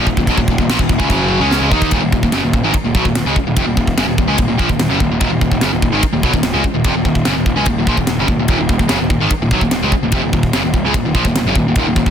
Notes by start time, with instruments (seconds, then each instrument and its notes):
0.07 picked electric bass D#1, distorted electric guitar D#2 A#2, kick
0.17 picked electric bass D#1, distorted electric guitar D#2 A#2, kick
0.27 picked electric bass B1, distorted electric guitar B2 F#3, kick, crash
0.37 picked electric bass D#1, distorted electric guitar D#2 A#2, kick
0.48 picked electric bass D#1, distorted electric guitar D#2 A#2, kick
0.58 picked electric bass D#1, distorted electric guitar D#2 A#2, kick
0.69 picked electric bass A#1, distorted electric guitar A#2 F3, snare, crash
0.79 picked electric bass D#1, distorted electric guitar D#2 A#2, kick
0.89 picked electric bass D#1, distorted electric guitar D#2 A#2, kick
0.99 picked electric bass C#2, distorted electric guitar C#3 G#3, kick
1.09 picked electric bass F#1, distorted electric guitar F#2 C#3 F#3, kick, crash
1.40 picked electric bass C#2, distorted electric guitar C#3 G#3 C#4
1.51 snare
1.60 picked electric bass C#2, distorted electric guitar C#3 G#3
1.71 picked electric bass D#2, distorted electric guitar D#3 A#3 D#4, kick
1.82 kick
1.91 picked electric bass D#1, distorted electric guitar D#2 A#2, kick, ride bell
2.02 picked electric bass D#1, distorted electric guitar D#2 A#2
2.12 picked electric bass D#1, distorted electric guitar D#2 A#2, kick
2.23 picked electric bass D#1, distorted electric guitar D#2 A#2, kick
2.32 picked electric bass F#1, distorted electric guitar F#2 C#3, snare, ride bell
2.42 picked electric bass D#1, distorted electric guitar D#2 A#2
2.53 picked electric bass D#1, distorted electric guitar D#2 A#2, kick
2.64 picked electric bass G#1, distorted electric guitar G#2 D#3
2.74 muted picked electric bass stroke, muted distorted electric guitar stroke, kick, ride bell
2.84 picked electric bass D#1, distorted electric guitar D#2 A#2
2.95 picked electric bass B1, distorted electric guitar B2 F#3, kick
3.05 picked electric bass D#1, distorted electric guitar D#2 A#2, kick
3.15 picked electric bass D#1, distorted electric guitar D#2 A#2, snare, ride bell
3.25 picked electric bass C#2, distorted electric guitar C#3 G#3
3.35 muted distorted electric guitar stroke, muted picked electric bass stroke, kick
3.45 picked electric bass D#1, distorted electric guitar D#2 A#2
3.56 picked electric bass F1, distorted electric guitar F2 C3, kick, ride bell
3.66 picked electric bass D#1, distorted electric guitar D#2 A#2
3.77 picked electric bass D#1, distorted electric guitar D#2 A#2, kick
3.87 kick
3.97 picked electric bass F#1, distorted electric guitar F#2 C#3, snare, ride bell
4.07 picked electric bass D#1, distorted electric guitar D#2 A#2
4.18 picked electric bass D#1, distorted electric guitar D#2 A#2, kick
4.27 picked electric bass C#2, distorted electric guitar C#3 G#3
4.36 picked electric bass D#1, distorted electric guitar D#2 A#2, kick, ride bell
4.48 picked electric bass D#1, distorted electric guitar D#2 A#2
4.58 picked electric bass A#1, distorted electric guitar A#2 F3, kick
4.69 picked electric bass D#1, distorted electric guitar D#2 A#2, kick
4.79 picked electric bass D#1, distorted electric guitar D#2 A#2, snare, ride bell
4.90 picked electric bass F#1, distorted electric guitar F#2 C#3
5.00 picked electric bass D#1, distorted electric guitar D#2 A#2, kick
5.11 picked electric bass D#1, distorted electric guitar D#2 A#2
5.20 picked electric bass D#1, distorted electric guitar D#2 A#2, kick, ride bell
5.30 picked electric bass D#1, distorted electric guitar D#2 A#2
5.41 picked electric bass D#1, distorted electric guitar D#2 A#2, kick
5.51 picked electric bass D#1, distorted electric guitar D#2 A#2, kick
5.61 picked electric bass F#1, distorted electric guitar F#2 C#3, snare, ride bell
5.72 picked electric bass D#1, distorted electric guitar D#2 A#2
5.82 picked electric bass D#1, distorted electric guitar D#2 A#2, kick
5.92 picked electric bass G#1, distorted electric guitar G#2 D#3
6.03 muted picked electric bass stroke, muted distorted electric guitar stroke, kick, ride bell
6.13 picked electric bass D#1, distorted electric guitar D#2 A#2
6.23 picked electric bass B1, distorted electric guitar B2 F#3, kick
6.33 picked electric bass D#1, distorted electric guitar D#2 A#2, kick
6.43 picked electric bass D#1, distorted electric guitar D#2 A#2, snare, ride bell
6.54 picked electric bass C#2, distorted electric guitar C#3 G#3
6.64 muted picked electric bass stroke, muted distorted electric guitar stroke, kick
6.74 picked electric bass D#1, distorted electric guitar D#2 A#2
6.84 picked electric bass F1, distorted electric guitar F2 C3, kick, ride bell
6.95 picked electric bass D#1, distorted electric guitar D#2 A#2
7.05 picked electric bass D#1, distorted electric guitar D#2 A#2, kick
7.15 kick
7.25 picked electric bass F#1, distorted electric guitar F#2 C#3, snare, ride bell
7.36 picked electric bass D#1, distorted electric guitar D#2 A#2
7.46 picked electric bass D#1, distorted electric guitar D#2 A#2, kick
7.55 picked electric bass C#2, distorted electric guitar C#3 G#3
7.66 picked electric bass D#1, distorted electric guitar D#2 A#2, kick, ride bell
7.77 picked electric bass D#1, distorted electric guitar D#2 A#2
7.86 picked electric bass A#1, distorted electric guitar A#2 F3, kick
7.97 picked electric bass D#1, distorted electric guitar D#2 A#2, kick
8.07 picked electric bass D#1, distorted electric guitar D#2 A#2, snare, ride bell
8.18 picked electric bass F#1, distorted electric guitar F#2 C#3
8.28 picked electric bass D#1, distorted electric guitar D#2 A#2, kick
8.38 picked electric bass D#1, distorted electric guitar D#2 A#2
8.48 picked electric bass D#1, distorted electric guitar D#2 A#2, kick, ride bell
8.59 picked electric bass D#1, distorted electric guitar D#2 A#2
8.69 picked electric bass D#1, distorted electric guitar D#2 A#2, kick
8.79 picked electric bass D#1, distorted electric guitar D#2 A#2, kick
8.88 picked electric bass F#1, distorted electric guitar F#2 C#3, snare, ride bell
9.00 picked electric bass D#1, distorted electric guitar D#2 A#2
9.10 picked electric bass D#1, distorted electric guitar D#2 A#2, kick
9.21 picked electric bass G#1, distorted electric guitar G#2 D#3
9.30 muted picked electric bass stroke, muted distorted electric guitar stroke, kick, ride bell
9.41 picked electric bass D#1, distorted electric guitar D#2 A#2
9.51 picked electric bass B1, distorted electric guitar B2 F#3, kick
9.61 picked electric bass D#1, distorted electric guitar D#2 A#2, kick
9.71 picked electric bass D#1, distorted electric guitar D#2 A#2, snare, ride bell
9.82 picked electric bass C#2, distorted electric guitar C#3 G#3
9.92 muted picked electric bass stroke, muted distorted electric guitar stroke, kick
10.02 picked electric bass D#1, distorted electric guitar D#2 A#2
10.12 picked electric bass F1, distorted electric guitar F2 C3, kick, ride bell
10.22 picked electric bass D#1, distorted electric guitar D#2 A#2
10.33 picked electric bass D#1, distorted electric guitar D#2 A#2, kick
10.43 kick
10.53 picked electric bass F#1, distorted electric guitar F#2 C#3, snare, ride bell
10.64 picked electric bass D#1, distorted electric guitar D#2 A#2
10.73 picked electric bass D#1, distorted electric guitar D#2 A#2, kick
10.84 picked electric bass C#2, distorted electric guitar C#3 G#3
10.94 picked electric bass D#1, distorted electric guitar D#2 A#2, kick, ride bell
11.04 picked electric bass D#1, distorted electric guitar D#2 A#2
11.15 picked electric bass A#1, distorted electric guitar A#2 F3, kick
11.25 picked electric bass D#1, distorted electric guitar D#2 A#2, kick
11.36 picked electric bass D#1, distorted electric guitar D#2 A#2, snare, ride bell
11.45 picked electric bass F#1, distorted electric guitar F#2 C#3
11.55 picked electric bass D#1, distorted electric guitar D#2 A#2, kick
11.65 picked electric bass D#1, distorted electric guitar D#2 A#2
11.76 picked electric bass D#1, distorted electric guitar D#2 A#2, kick, ride bell
11.87 picked electric bass D#1, distorted electric guitar D#2 A#2
11.96 picked electric bass D#1, distorted electric guitar D#2 A#2, kick
12.06 picked electric bass D#1, distorted electric guitar D#2, kick